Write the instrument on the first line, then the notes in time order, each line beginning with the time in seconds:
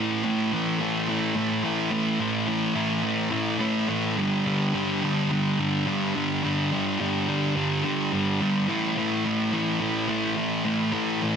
distorted electric guitar
Already playing: A2 E3 A3
0.23 A2 E3 A3
0.52 A2 E3 A3
0.79 A2 E3 A3
1.08 A2 E3 A3
1.35 A2 E3 A3
1.63 A2 E3 A3
1.90 A2 E3 A3
2.20 A2 E3 A3
2.47 A2 E3 A3
2.74 A2 E3 A3
3.03 A2 E3 A3
3.30 A2 E3 A3
3.58 A2 E3 A3
3.88 A2 E3 A3
4.16 G2 D3 G3
4.45 G2 D3 G3
4.73 G2 D3 G3
5.02 G2 D3 G3
5.30 G2 D3 G3
5.59 G2 D3 G3
5.86 G2 D3 G3
6.14 G2 D3 G3
6.43 G2 D3 G3
6.72 G2 D3 G3
7.00 G2 D3 G3
7.28 G2 D3 G3
7.56 G2 D3 G3
7.84 G2 D3 G3
8.12 G2 D3 G3
8.41 G2 D3 G3
8.68 A2 E3 A3
8.96 A2 E3 A3
9.25 A2 E3 A3
9.52 A2 E3 A3
9.80 A2 E3 A3
10.09 A2 E3 A3
10.36 A2 E3 A3
10.64 A2 E3 A3
10.92 A2 E3 A3
11.22 A2 E3 A3